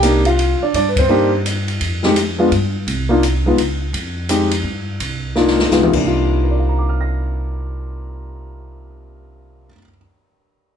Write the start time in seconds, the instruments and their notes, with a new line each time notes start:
Already playing: upright bass C2, grand piano G5
0.03 grand piano A#3 D4 D#4 G4, hi-hat pedal, ride
0.25 grand piano F4 F5, ride
0.39 ride
0.60 grand piano D4 D5, muted upright bass stroke
0.74 upright bass G2, grand piano D4 D5, ride
0.89 grand piano B4
0.96 grand piano C4 C5, kick, ride
1.09 grand piano A#3 D4 D#4 G4
1.46 hi-hat pedal, ride
1.68 ride
1.81 upright bass F2, ride
2.03 grand piano G#3 C4 D#4 G4, snare
2.16 hi-hat pedal, ride
2.38 grand piano G#3 B3 D4 F4
2.51 upright bass G2, ride
2.87 upright bass C2, ride
3.09 grand piano A#3 D4 D#4 F4
3.23 hi-hat pedal, ride
3.46 grand piano G#3 B3 D#4 F4
3.58 upright bass C#2, ride
3.93 upright bass F2, ride
4.29 grand piano G#3 C4 D#4 G4, hi-hat pedal, ride
4.51 ride
4.64 upright bass G2
5.00 upright bass C2, ride
5.35 grand piano A#3 D4 D#4 F4, snare
5.47 snare
5.59 snare
5.71 upright bass C#2, grand piano G#3 B3 D#4 F4, snare, hi-hat pedal
5.82 grand piano C3, mid tom
5.89 grand piano A#3
5.93 upright bass C2, grand piano D4, kick, crash
6.01 grand piano D#4
6.07 grand piano F4
6.44 grand piano A#4
6.51 grand piano D5
6.60 grand piano F5
6.69 grand piano A#5
6.79 grand piano D6
6.89 grand piano F6
7.01 grand piano A#6